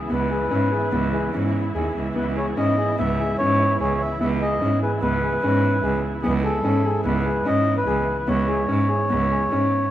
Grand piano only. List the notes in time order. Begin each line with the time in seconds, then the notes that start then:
0.10 B3
0.30 G#4
0.51 C#4
0.72 G#4
0.92 B3
1.13 G#4
1.33 C#4
1.75 G#4
2.16 B3
2.36 G#4
2.57 C#4
2.78 G#4
2.99 B3
3.19 G#4
3.40 C#4
3.80 G#4
4.21 B3
4.41 G#4
4.61 C#4
4.82 G#4
5.03 B3
5.23 G#4
5.44 C#4
5.83 G#4
6.23 B3
6.44 G#4
6.64 C#4
6.85 G#4
7.06 B3
7.25 G#4
7.46 C#4
7.87 G#4
8.28 B3
8.48 G#4
8.68 C#4
8.89 G#4
9.10 B3
9.31 G#4
9.52 C#4